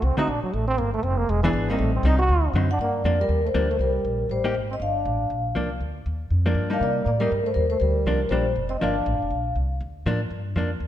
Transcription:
0.02 C2 C4
0.17 D3 A3 C4 D#4 F#4, muted upright bass stroke
0.27 A#1 D4
0.43 F#3, muted upright bass stroke
0.54 A1 A3
0.68 C4
0.78 G1 A#3
0.94 A3
1.03 F1 C4
1.18 A#3
1.29 E1 G#3
1.43 E3 B3 D4 G#4
1.53 G#1
1.69 G3 A#3 C4 D#4
1.79 A1 A3
1.95 C4
2.03 C2 G3 C4 D#4
2.19 F#4
2.29 D2
2.53 F#2 D3 F#3 C4 D#4
2.71 D4 F#5
2.79 G2 A#3 D5
3.04 F2 F3 A#3 D4 D5
3.21 G3 A#4
3.29 D#2
3.44 A3 C5
3.54 D2 F3 G3 A#3 D4 A#4
3.69 A3 C5
3.79 C2 G3 A#4
4.05 A#1
4.29 A1 G3 C5
4.44 A#3 D#4 G4
4.54 G#1
4.71 C4 D#5
4.80 G1 D4 F5
5.06 A1
5.30 A#1
5.55 C2 F3 A#3 D4
5.80 D2
6.06 D#2
6.30 F2
6.46 F3 A#3 D4
6.55 G2
6.70 G3 A#3 D4 D#4 F5
6.80 C3 A#3 D5
7.05 A2 A#3 D5
7.19 G3 A#3 D#4 A#4
7.32 G2
7.43 A3 C5
7.54 D#2 G3 A#4
7.69 A3 C5
7.80 D2 G3 A#4
8.06 C2 F3 A#3 D4
8.29 A#1 F3 G3 A#3 D4 C5
8.56 F1
8.69 C4 D#5
8.80 G1 F3 A#3 D4 F5
9.06 A1
9.14 G1
9.22 F1
9.31 A#1
9.56 C2
9.81 D2
10.06 A2 F3 A#3 D4
10.30 G2
10.56 F2 F3 A#3 D4
10.80 D#2

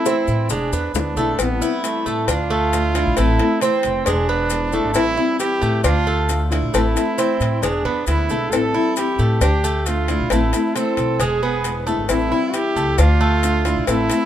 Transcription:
Already playing: E4
0.06 E3 A3 C4 E4, high bongo, maracas
0.28 A2, high bongo, maracas
0.49 E1 G#3 D4, muted nylon-string guitar stroke, high bongo, maracas
0.72 E2 B3, high bongo, maracas
0.94 D2 D3 G#3 B3 D4 E4, high bongo, low bongo, maracas
1.16 B1 D3 G#3 A3 B3 E4, maracas
1.39 A1 E3 G3 B3 C4 E4, cowbell, maracas
1.61 G3 C4 E4, maracas
1.84 E3 G3 A3 C4 E4, cowbell, maracas
2.06 A2 A3, maracas
2.27 D2 D4 F4, muted nylon-string guitar stroke, cowbell, maracas
2.50 A3
2.72 D3 A3 D4 F4, cowbell, maracas
2.95 A3 D4 E4 F4, cowbell, maracas
3.06 A#1
3.17 A1 E3 A3 C4 E4, cowbell, maracas
3.39 A3 C4 E4, cowbell
3.61 E3 A3 C4 E4, cowbell, maracas
3.83 F1, cowbell, maracas
4.05 E1 G#3 D4, muted nylon-string guitar stroke, cowbell, maracas
4.29 B3
4.50 D3 G#3 B3 E4, cowbell, maracas
4.72 D3 G#3 A3 B3 E4, maracas
4.84 G#1
4.94 A1 E3 G3 C4 E4, cowbell, maracas
5.17 G3 C4 E4
5.39 E3 G3 C4 G4, cowbell, maracas
5.62 A2 A3, maracas
5.83 D2 D4 F4, muted nylon-string guitar stroke, cowbell, maracas
6.07 A3
6.29 D3 A3 D4 F4, cowbell, maracas
6.51 A3 D4 E4 F4, cowbell, maracas
6.62 A#1
6.73 A1 E3 A3 C4 E4, cowbell, maracas
6.95 A3 C4 E4, cowbell, maracas
7.18 E3 A3 C4 E4, cowbell, maracas
7.40 A2, cowbell, maracas
7.62 E1 G#3 D4, muted nylon-string guitar stroke, cowbell, maracas
7.85 E2 B3
8.07 D2 D3 G#3 B3 E4, cowbell, maracas
8.30 B1 D3 G#3 A3 B3 E4, maracas
8.51 A1 E3 G3 C4 E4 A4, cowbell, maracas
8.74 G3 C4 E4
8.96 E3 G3 C4 E4 G4, cowbell, maracas
9.19 A2 A3, maracas
9.41 D2 D4 G4, muted nylon-string guitar stroke, cowbell, maracas
9.64 A3, maracas
9.86 D3 A3 D4 F4, cowbell, maracas
10.08 A3 D4 E4 F4, cowbell, maracas
10.20 B1
10.30 A1 E3 A3 C4 E4, cowbell, maracas
10.53 A3 C4 E4, cowbell, maracas
10.76 E3 A3 C4 E4 A4, cowbell, maracas
10.97 B1, cowbell, maracas
11.19 E1 G#3 G#4, muted nylon-string guitar stroke, cowbell, maracas
11.43 B3
11.64 D3 G#3 B3 E4, cowbell, maracas
11.87 D3 G#3 A3 B3 E4, maracas
11.98 G#1
12.09 A1 E3 G3 C4 E4, cowbell, maracas
12.31 G3 C4 E4
12.53 E3 G3 C4 E4 G4, cowbell, maracas
12.76 C#2 A3, maracas
12.98 D2 D4 F4, muted nylon-string guitar stroke, cowbell, maracas
13.21 A3
13.43 D3 A3 D4 F4, cowbell, maracas
13.65 A3 D4 E4 F4, cowbell, maracas
13.76 B1
13.87 A1 E3 A3 C4 E4, cowbell, maracas
14.10 A3 C4 E4, cowbell, maracas

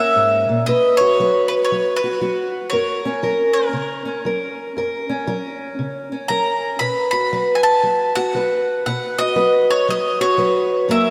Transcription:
Already playing: C#3 A#3 C#4 A#4 E5
0.16 G#2
0.49 A#2
0.66 B2 B4 D#5
0.97 F#4 C#5
1.20 F#3 B4
1.48 B4
1.65 C#5
1.72 F#3
1.96 B4
2.04 F#4
2.21 F#3 F#4
2.70 F#2 A#4 C#5
3.05 C#4
3.23 F#3 A#4
3.53 A#4
3.73 C#3
4.05 C#4
4.25 F#3 A#4
4.77 F#2 A#4
5.09 C#4
5.27 F#3 A#4
5.79 C#3
6.12 C#4
6.28 F#3 A#4 A#5
6.79 B2 B4 B5
7.11 F#4 B5
7.33 F#3 B4
7.55 G#5
7.63 A5
7.83 F#3
8.15 F#4 F#5
8.34 F#3 B4
8.86 B2 B4 F#5
9.18 F#4 D#5
9.36 F#3 B4
9.70 C#5
9.88 F#3 D#5
10.21 F#4 C#5
10.38 F#3 B4
10.88 F#2 F#3 A#3 C#4 A#4 E5

